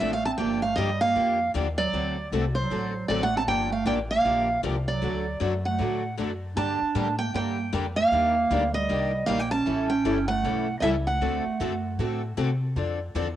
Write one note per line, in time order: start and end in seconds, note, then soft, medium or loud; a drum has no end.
0.00 0.33 A1 medium
0.00 0.12 D3 medium
0.00 0.12 F3 medium
0.00 0.12 A3 medium
0.00 0.12 C4 medium
0.00 0.12 D4 medium
0.00 0.12 A4 medium
0.00 0.12 E5 loud
0.13 0.25 A3 medium
0.13 0.25 F5 medium
0.25 0.40 C4 medium
0.25 0.30 A5 medium
0.37 0.76 G1 medium
0.37 0.60 D3 medium
0.37 0.61 F3 medium
0.37 0.62 A#3 medium
0.37 0.61 A#3 medium
0.37 0.61 D4 medium
0.37 0.61 G4 medium
0.37 0.62 G5 medium
0.62 0.76 A3 medium
0.62 0.76 F5 medium
0.76 1.14 G2 medium
0.76 0.89 D3 medium
0.76 0.89 F3 medium
0.76 1.00 G3 medium
0.76 0.89 A#3 medium
0.76 0.89 D4 medium
0.76 0.89 G4 medium
0.76 0.99 D#5 medium
1.01 1.50 A#3 medium
1.01 1.50 F5 loud
1.15 1.53 F2 medium
1.15 1.37 D3 medium
1.15 1.38 F3 medium
1.15 1.38 A#3 medium
1.15 1.38 D4 medium
1.15 1.38 G4 medium
1.54 1.92 D#2 medium
1.54 1.66 D3 medium
1.54 1.66 F3 medium
1.54 1.66 A#3 loud
1.54 1.66 D4 medium
1.54 1.66 G4 medium
1.78 2.27 F#3 medium
1.78 2.27 D5 medium
1.93 2.31 D2 medium
1.93 2.15 D3 medium
1.93 2.15 A3 medium
1.93 2.15 C4 medium
1.93 2.15 F#4 medium
1.93 2.15 A4 medium
2.32 2.69 C2 medium
2.32 2.44 D3 medium
2.32 2.44 A3 medium
2.32 2.44 C4 medium
2.32 2.44 F#4 medium
2.32 2.44 A4 medium
2.55 3.06 F#3 medium
2.55 3.05 C5 medium
2.70 3.08 A1 medium
2.70 2.92 D3 medium
2.70 2.93 A3 medium
2.70 2.93 C4 medium
2.70 2.93 F#4 medium
2.70 2.93 A4 medium
3.08 3.47 A1 medium
3.08 3.21 D3 medium
3.08 3.21 F#3 medium
3.08 3.21 A3 medium
3.08 3.21 C4 medium
3.08 3.21 F#4 loud
3.08 3.21 A4 loud
3.08 3.22 D5 medium
3.22 3.34 A3 medium
3.22 3.35 F#5 loud
3.36 3.41 C4 medium
3.36 3.42 A5 medium
3.47 3.85 G1 medium
3.47 3.70 D3 medium
3.47 3.70 F3 medium
3.47 3.70 A#3 medium
3.47 3.70 D4 medium
3.47 3.70 G4 medium
3.47 3.71 G5 loud
3.71 3.85 A3 medium
3.71 3.86 F5 medium
3.85 4.23 A1 medium
3.85 3.98 D3 medium
3.85 3.98 F3 medium
3.85 3.98 A#3 medium
3.85 3.98 D4 medium
3.85 3.98 G4 loud
3.85 3.93 G5 medium
4.10 4.60 A#3 medium
4.10 4.60 F5 medium
4.24 4.62 A#1 medium
4.24 4.47 D3 medium
4.24 4.47 F3 medium
4.24 4.47 A#3 medium
4.24 4.47 D4 medium
4.24 4.47 G4 medium
4.63 5.01 C2 medium
4.63 4.75 D3 medium
4.63 4.75 F3 medium
4.63 4.75 A#3 loud
4.63 4.75 D4 loud
4.63 4.76 G4 loud
4.88 5.37 F#3 medium
4.88 5.37 D5 medium
5.01 5.40 D2 medium
5.01 5.24 D3 medium
5.01 5.24 F#3 medium
5.01 5.24 A3 medium
5.01 5.24 D4 medium
5.01 5.24 F#4 medium
5.01 5.25 A4 medium
5.40 5.79 F#2 medium
5.40 5.52 D3 medium
5.40 5.52 F#3 medium
5.40 5.52 A3 medium
5.40 5.52 D4 medium
5.40 5.53 F#4 medium
5.40 5.53 A4 medium
5.65 6.15 A3 medium
5.65 6.15 F#5 medium
5.78 6.17 A2 medium
5.78 6.01 D3 medium
5.78 6.01 F#3 medium
5.78 6.01 A3 medium
5.78 6.01 D4 medium
5.78 6.01 F#4 medium
5.78 6.03 A4 medium
6.17 6.56 F#2 medium
6.17 6.30 D3 medium
6.17 6.30 F#3 medium
6.17 6.30 A3 medium
6.17 6.30 D4 medium
6.17 6.30 F#4 loud
6.17 6.31 A4 medium
6.56 6.80 G2 medium
6.56 6.79 D3 medium
6.56 6.79 G3 medium
6.56 6.79 A#3 medium
6.56 7.16 D4 medium
6.56 6.79 D4 medium
6.56 6.79 G4 medium
6.56 7.16 A5 loud
6.82 muted upright bass stroke soft
6.95 7.33 A2 medium
6.95 7.07 D3 medium
6.95 7.07 G3 loud
6.95 7.07 A#3 medium
6.95 7.08 D4 medium
6.95 7.08 G4 loud
7.18 7.32 A#3 medium
7.18 7.33 G5 loud
7.33 7.72 G2 medium
7.33 7.56 D3 medium
7.33 7.56 G3 medium
7.33 7.69 A#3 medium
7.33 7.56 A#3 medium
7.33 7.57 D4 medium
7.33 7.57 G4 medium
7.33 7.71 G5 medium
7.73 8.11 F2 medium
7.73 7.84 D3 medium
7.73 7.85 G3 medium
7.73 7.85 A#3 medium
7.73 7.85 D4 loud
7.73 7.85 G4 loud
7.96 8.70 A#3 medium
7.96 8.70 F5 loud
8.11 8.49 D#2 medium
8.11 8.34 D#3 medium
8.11 8.34 G3 medium
8.11 8.34 A#3 medium
8.11 8.34 D4 medium
8.11 8.34 G4 medium
8.51 8.88 D2 loud
8.51 8.62 D#3 medium
8.51 8.62 G3 medium
8.51 8.62 A#3 medium
8.51 8.63 D4 loud
8.51 8.63 G4 loud
8.72 9.22 G3 medium
8.72 9.29 D#5 medium
8.89 9.27 C2 medium
8.89 9.11 D#3 medium
8.89 9.11 G3 medium
8.89 9.11 A#3 medium
8.89 9.11 D4 medium
8.89 9.12 G4 medium
9.25 9.65 A#1 medium
9.25 9.39 D#3 medium
9.25 9.40 G3 medium
9.25 9.40 A#3 medium
9.25 9.40 D4 loud
9.25 9.40 G4 medium
9.25 9.40 F5 loud
9.40 9.51 A#3 medium
9.40 9.51 G5 medium
9.51 9.88 C#4 medium
9.51 9.87 A5 loud
9.66 10.04 A1 medium
9.66 9.88 E3 medium
9.66 9.89 G3 medium
9.66 9.89 C#4 medium
9.66 9.89 E4 medium
9.66 9.89 A4 medium
9.90 10.27 C#4 medium
9.90 10.27 G5 medium
10.05 10.42 G1 loud
10.05 10.17 E3 medium
10.05 10.17 G3 medium
10.05 10.17 C#4 medium
10.05 10.17 E4 medium
10.05 10.17 A4 medium
10.28 10.74 A3 medium
10.28 10.75 F#5 medium
10.43 10.81 B1 medium
10.43 10.66 E3 medium
10.43 10.66 G3 medium
10.43 10.66 C#4 medium
10.43 10.66 E4 medium
10.43 10.66 A4 medium
10.80 11.20 C#2 medium
10.80 10.94 E3 loud
10.80 10.82 F#3 medium
10.80 10.93 G3 medium
10.80 10.94 G3 medium
10.80 10.95 C#4 loud
10.80 10.95 E4 loud
10.80 10.95 A4 loud
10.80 10.83 D#5 medium
10.80 10.89 E5 medium
11.07 12.34 A3 medium
11.07 12.33 F#5 medium
11.21 11.44 D2 medium
11.21 11.43 D3 medium
11.21 11.43 A3 medium
11.21 11.43 C4 medium
11.21 11.44 F#4 medium
11.21 11.44 A4 medium
11.45 muted upright bass stroke soft
11.60 11.97 F#2 loud
11.60 11.72 D3 medium
11.60 11.72 A3 loud
11.60 11.72 C4 medium
11.60 11.73 F#4 medium
11.60 11.73 A4 medium
11.98 12.36 A2 medium
11.98 12.21 D3 medium
11.98 12.21 A3 medium
11.98 12.21 C4 medium
11.98 12.21 F#4 medium
11.98 12.21 A4 medium
12.37 12.75 C3 medium
12.37 12.49 D3 medium
12.37 12.49 A3 medium
12.37 12.49 C4 medium
12.37 12.49 F#4 loud
12.37 12.49 A4 medium
12.76 13.14 F2 medium
12.76 12.98 D3 medium
12.76 12.98 F3 medium
12.76 12.99 C4 medium
12.76 12.99 D4 medium
12.76 12.99 A4 medium
13.15 13.36 E2 medium
13.15 13.27 D3 medium
13.15 13.27 F3 medium
13.15 13.27 C4 medium
13.15 13.27 D4 medium
13.15 13.27 A4 medium